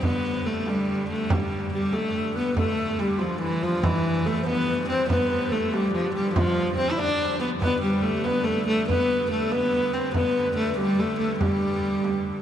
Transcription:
Already playing: G2 D3
0.03 B3, frame drum
0.46 A3
0.66 G3, frame drum
0.88 frame drum
1.09 A3, frame drum
1.30 G3, frame drum
1.73 G3 G4
1.93 A3 A4, frame drum
2.15 A4
2.36 B3 B4
2.57 G2 D3 A3 A4, frame drum
2.77 A4
2.98 G3 G4
3.18 F3 F4, frame drum
3.41 E3 E4, frame drum
3.62 F3 F4, frame drum
3.83 E3 E4, frame drum
4.26 A3 A4
4.41 C5
4.46 B3 B4, frame drum
4.68 B4, frame drum
4.88 C4 C5, frame drum
5.10 B3 B4, frame drum
5.30 B4
5.51 A3 A4
5.72 G3 G4, frame drum
5.94 F3, frame drum
6.14 G3 G4, frame drum
6.34 F3 F4, frame drum
6.57 frame drum
6.77 C4 C5, frame drum
6.91 E4
6.97 D4 D5, frame drum
7.20 frame drum
7.40 B3
7.61 G2 D3 B3 B4, frame drum
7.82 G3 G4
8.03 A3
8.24 B3 B4, frame drum
8.44 A3 A4, frame drum
8.67 A3 A4, frame drum
8.88 B3 B4, frame drum
9.31 A3 A4
9.52 B3 B4, frame drum
9.73 frame drum
9.93 C4 C5, frame drum
10.14 B3 B4, frame drum
10.56 A3
10.77 G3 G4, frame drum
10.99 A3 A4, frame drum
11.20 A3, frame drum
11.39 G3 G4, frame drum
11.83 frame drum
12.04 frame drum

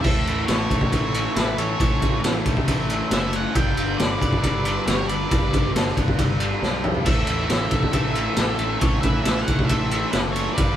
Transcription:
0.02 A1 A2 E3 A4 E5, kick, crash
0.06 A3 E4 A4 C#5
0.26 A1 E3, ride
0.46 A1 E3 A4 C#5, snare, ride
0.60 snare
0.70 A1 A3, kick, ride
0.81 kick
0.90 A1 A2 E3 A4 C#5, kick, ride
0.94 A3
1.14 C#4, ride
1.36 A1 E4 A4 B4, snare, ride
1.57 A1 C#4 A4 C#5, ride
1.78 A1 A2 E3 A3, kick, ride
2.02 A1 E3, kick, ride
2.24 A1 E3, snare, ride
2.35 snare
2.46 A1 A3, kick, ride
2.57 kick
2.65 A1 A2 E3 A3, kick, ride
2.89 C#4, ride
3.11 F#1 A4 E5, snare, ride
3.33 C#4 C#5 F#5, ride
3.53 G1 G2 D3 G3 G4 B4 D5 G5, kick, ride
3.60 D5
3.77 G1 D3, ride
3.97 G1 G3 D5, snare, ride
4.02 B4
4.21 G1 B3, kick, ride
4.33 kick
4.41 G1 G2 D3 G3 B4 D5, kick, ride
4.65 D4, ride
4.87 G1 G4 C#5, snare, ride
5.07 G1 D4 B4 D5, ride
5.30 G1 G2 D3 G3, kick, ride
5.53 G1 D3, kick, ride
5.74 G1 G3, snare, ride
5.87 snare
5.96 G1 B3, kick, ride
6.08 kick
6.17 G1 G2 D3 G3, kick, ride
6.40 D4, ride
6.62 B1 G4, snare
6.84 D4, mid tom
6.95 floor tom
7.05 A1 A2 E3 A3 E4 A4 C#5 E5, kick, crash, ride
7.27 A1 E3, ride
7.49 A1 E3, snare, ride
7.71 A1 A3, kick, ride
7.83 kick
7.91 A1 A2 E3 A4 E5, kick, ride
7.96 A3
8.15 C#4, ride
8.37 A1 A4, snare, ride
8.59 A1 C#4, ride
8.79 A1 A2 E3 A4 C#5, kick, ride
8.84 A3
9.01 A1 E3 B4 E5, kick, ride
9.21 A4 E5, ride
9.26 A1 E3, snare
9.37 snare
9.41 C#5 F#5
9.48 A1 A3, kick, ride
9.59 kick
9.65 A4 E5
9.69 A1 A2 E3 A3, kick, ride
9.91 C#4, ride
10.11 F#1 E4 A4 B4, snare, ride
10.32 A4 C#5, ride
10.37 C#4
10.53 G2 B4 D5
10.58 G1 G2 D3 G3 D4 G4 B4, kick, ride

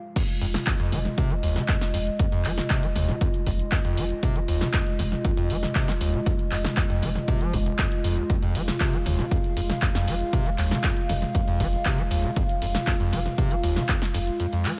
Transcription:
Already playing: G#3 F4 F5
0.16 F2 G#3 F4 D#5, kick, closed hi-hat, crash
0.29 closed hi-hat
0.41 F1 F2, open hi-hat
0.54 snare, closed hi-hat, mid tom
0.67 F2, kick, clap, closed hi-hat
0.80 F2, closed hi-hat
0.92 F1 F3, open hi-hat, mid tom
1.05 snare, closed hi-hat, mid tom
1.18 C3, kick, closed hi-hat
1.31 F3, closed hi-hat
1.43 F1 D#2, open hi-hat
1.56 C3, snare, closed hi-hat, mid tom
1.68 F2, kick, clap, closed hi-hat
1.81 snare, closed hi-hat
1.94 F1 F2, open hi-hat
2.07 closed hi-hat
2.19 F2, kick, closed hi-hat
2.32 F2, closed hi-hat
2.45 F1 F3, clap, open hi-hat
2.58 snare, mid tom
2.70 C3, kick, clap, closed hi-hat
2.83 F3, closed hi-hat
2.96 F1 D#2, open hi-hat, mid tom
3.09 C3, snare, closed hi-hat, mid tom
3.21 F2, kick, closed hi-hat
3.34 closed hi-hat
3.47 F1 F2, kick, open hi-hat
3.59 closed hi-hat
3.72 F2, kick, clap, closed hi-hat
3.85 F2, closed hi-hat
3.97 F1 F3, open hi-hat
4.10 closed hi-hat
4.23 C3, kick, closed hi-hat
4.36 F3, closed hi-hat
4.48 F1 D#2, open hi-hat
4.61 C3, snare, closed hi-hat, mid tom
4.74 F2, kick, clap, closed hi-hat
4.87 closed hi-hat
4.99 F1 F2, open hi-hat, mid tom
5.12 snare, closed hi-hat, mid tom
5.25 F2, kick, closed hi-hat
5.37 F2, closed hi-hat
5.50 F1 F3, open hi-hat
5.63 snare, closed hi-hat, mid tom
5.75 C3, kick, clap, closed hi-hat
5.88 F3, snare, closed hi-hat
6.01 F1 D#2, open hi-hat
6.14 C3, closed hi-hat
6.26 F2, kick, closed hi-hat
6.39 closed hi-hat
6.52 F1 F2, clap, open hi-hat
6.65 snare, closed hi-hat, mid tom
6.77 F2, kick, clap, closed hi-hat
6.90 F2, closed hi-hat
7.03 F1 F3, open hi-hat, mid tom
7.15 snare, closed hi-hat, mid tom
7.28 C3, kick, closed hi-hat
7.41 F3, closed hi-hat
7.53 F1 F2, kick, open hi-hat
7.66 F1, closed hi-hat
7.79 F2, kick, clap, closed hi-hat
7.92 closed hi-hat
8.04 F1 F2, open hi-hat
8.17 D#2, closed hi-hat
8.30 F2 F5, kick, closed hi-hat
8.42 F2, closed hi-hat
8.55 F1 F3, open hi-hat, ride
8.68 snare, closed hi-hat, mid tom
8.80 C3, kick, clap, closed hi-hat
8.93 F3, closed hi-hat
9.06 F1 D#2, open hi-hat, mid tom, ride
9.19 C3, snare, closed hi-hat, mid tom
9.31 F2, kick, closed hi-hat
9.44 closed hi-hat
9.57 F1 F2, open hi-hat, ride
9.70 snare, closed hi-hat, mid tom
9.82 F2, kick, clap, closed hi-hat
9.95 F2, snare, closed hi-hat
10.08 F1 F3, open hi-hat, ride
10.20 closed hi-hat
10.33 C3, kick, closed hi-hat
10.46 F3, closed hi-hat
10.58 F1 D#2, clap, open hi-hat, ride
10.71 C3, snare, closed hi-hat, mid tom
10.84 F2, kick, clap, closed hi-hat
10.97 closed hi-hat
11.09 F1 F2, open hi-hat, mid tom, ride
11.22 snare, closed hi-hat, mid tom
11.35 F2, kick, closed hi-hat
11.48 F2, closed hi-hat
11.60 F1 F3, kick, open hi-hat, ride
11.73 closed hi-hat
11.85 C3, kick, clap, closed hi-hat
11.98 F3, closed hi-hat
12.11 F1 D#2, open hi-hat, ride
12.24 C3, closed hi-hat
12.36 F2, kick, closed hi-hat
12.49 closed hi-hat
12.62 F1 F2, open hi-hat, ride
12.75 snare, closed hi-hat, mid tom
12.87 F2, kick, clap, closed hi-hat
13.00 F2, closed hi-hat
13.13 F1 F3, open hi-hat, mid tom, ride
13.26 snare, closed hi-hat, mid tom
13.38 C3, kick, closed hi-hat
13.51 F3, closed hi-hat
13.63 F1 D#2, open hi-hat, ride
13.76 C3, snare, closed hi-hat, mid tom
13.89 F2, kick, clap, closed hi-hat
14.02 snare, closed hi-hat
14.14 F1 F2, open hi-hat, ride
14.27 closed hi-hat
14.40 F2, closed hi-hat
14.53 F2, closed hi-hat
14.65 F3, clap, open hi-hat, ride

